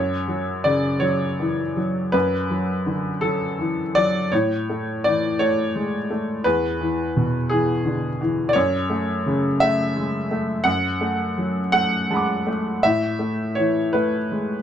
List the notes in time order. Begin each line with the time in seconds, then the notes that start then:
Already playing: F#2 C#5
0.28 F#3
0.64 C#3 D5
1.00 F#3 C#5
1.40 E3
1.77 F#3
2.12 F#2 B4
2.50 F#3
2.86 D3
3.21 F#3 A4
3.59 E3
3.95 F#3 D5
4.32 A2 C#5
4.70 A3
5.04 E3 D5
5.39 A3 C#5
5.76 G#3
6.10 A3
6.44 E2 B4
6.81 E3
7.17 B2
7.49 E3 G#4
7.85 D3
8.21 E3
8.49 D5
8.53 F#2 C#5
8.90 A3
9.26 C#3
9.60 A3 E5
9.97 G#3
10.31 A3
10.64 F#2 F#5
11.01 A3
11.38 F#3
11.72 A3 F#5
12.10 G#3 A5 B5
12.17 D6
12.47 A3
12.83 A2 E5
13.19 A3
13.55 E3 C#5
13.93 A3 B4
14.32 G#3